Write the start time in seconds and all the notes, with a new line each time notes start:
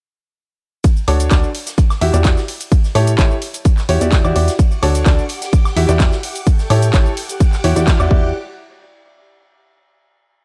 0.84 kick, closed hi-hat, ride, shaker
0.97 shaker
1.08 D2 D4 F#4 A4 C#5, open hi-hat, ride, high woodblock
1.20 closed hi-hat, ride, shaker
1.30 D2 D4 F#4 A4 D5, kick, snare, clap, closed hi-hat, ride, shaker
1.44 shaker
1.54 open hi-hat, ride
1.67 snare, closed hi-hat, shaker
1.78 kick, closed hi-hat, ride, shaker
1.90 snare, high woodblock, shaker
2.01 E2 E4 F#4 G4 E5, open hi-hat, ride
2.14 E2 E4 F#4 G4 D5, clap, closed hi-hat, shaker
2.24 kick, snare, clap, closed hi-hat, ride, shaker
2.37 snare, shaker
2.48 open hi-hat
2.61 closed hi-hat, ride, shaker
2.72 kick, closed hi-hat, ride, shaker
2.84 snare, shaker
2.95 A2 E4 G4 A4 C#5, snare, open hi-hat, ride, high woodblock
3.07 closed hi-hat, shaker
3.18 A1 E4 G4 A4 C#5, kick, snare, clap, closed hi-hat, ride, shaker
3.31 shaker
3.41 open hi-hat, ride
3.54 closed hi-hat, ride, shaker
3.65 kick, closed hi-hat, ride, shaker
3.78 snare, clap, shaker
3.89 E2 E4 F#4 G4 C#5, open hi-hat, ride
4.01 E2 E4 F#4 G4 D5, closed hi-hat, ride, shaker
4.12 kick, snare, clap, closed hi-hat, ride, shaker
4.25 E2 E4 F#4 G4 D5, high woodblock, shaker
4.36 E2 E4 F#4 G4 D5, open hi-hat, ride
4.48 snare, closed hi-hat, shaker
4.59 F#5 C#6 D6, kick, closed hi-hat, ride, shaker
4.72 shaker
4.83 D2 D4 F#4 A4 C#5, open hi-hat, ride, high woodblock
4.95 closed hi-hat, ride, shaker
5.06 D2 D4 F#4 A4 D5, kick, snare, clap, closed hi-hat, ride, shaker
5.19 shaker
5.29 G4, open hi-hat, ride
5.42 snare, closed hi-hat, shaker
5.53 kick, closed hi-hat, ride, shaker
5.65 snare, high woodblock, shaker
5.76 E2 E4 F#4 G4 E5, open hi-hat, ride
5.89 E2 E4 F#4 G4 D5, clap, closed hi-hat, shaker
6.00 kick, snare, clap, closed hi-hat, ride, shaker
6.12 snare, shaker
6.23 open hi-hat
6.35 closed hi-hat, ride, shaker
6.47 A4 G5 C#6, kick, closed hi-hat, ride, shaker
6.59 snare, shaker
6.70 A2 E4 G4 A4 C#5, snare, open hi-hat, ride, high woodblock
6.82 closed hi-hat, shaker
6.94 A1 E4 G4 A4 C#5, kick, snare, clap, closed hi-hat, ride, shaker
7.06 shaker
7.17 G4 F#5 D6, open hi-hat, ride
7.29 closed hi-hat, ride, shaker
7.40 kick, closed hi-hat, ride, shaker
7.53 snare, clap, shaker
7.64 E2 E4 F#4 G4 C#5, open hi-hat, ride
7.76 E2 E4 F#4 G4 D5, closed hi-hat, ride, shaker
7.87 kick, snare, clap, closed hi-hat, ride, shaker
8.00 E2 E4 F#4 G4 D5, high woodblock, shaker
8.11 E2 E4 F#4 G4 D5 F#5 D6, kick